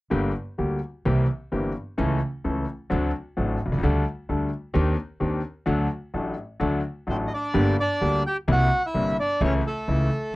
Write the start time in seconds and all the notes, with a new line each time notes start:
0.10 G1 G2 D3 G3 A#3 G4
0.58 D2 D3 G3 A#3 G4
1.05 C2 C3 E3 A#3 C4 G4
1.52 G1 G2 E3 A#3 C4 G4
1.98 C#2 C#3 E3 A3 C#4 A4
2.44 C#2 C#3 E3 A3 C#4 A4
2.90 D2 D3 F#3 C4 D4 A4
3.37 A1 A2 F#3 C4 D4 A4
3.66 B1
3.72 C2
3.78 C#2
3.83 D2 D3 G3 A3 D4 A4
4.29 D2 D3 G3 A3 D4 A4
4.74 D#2 D#3 C4 D4 G4
5.20 D#2 D#3 C4 D4 G4
5.66 D2 D3 F#3 A3 D4 A4
6.14 A1 A2 F#3 A3 D4 A4
6.60 D2 D3 F#3 A3 D4 A4
7.07 A1 A2 F#3 A3 C4 D4 A4 C5
7.27 D#5
7.34 D4 D5
7.54 G1 G2 D3 G3 A#3 G4
7.80 D4 D5
8.01 D2 D3 G3 A#3 G4
8.27 G4 G5
8.48 C2 C3 G3 A#3 E4
8.52 F#4 F#5
8.86 E4 E5
8.94 G1 G2 C3 G3 A#3 E4
9.20 D4 D5
9.41 C#2 C#3 E3 A3 C#4 E4 C#5
9.67 A3 A4
9.88 C#2 C#3 E3 A3 E4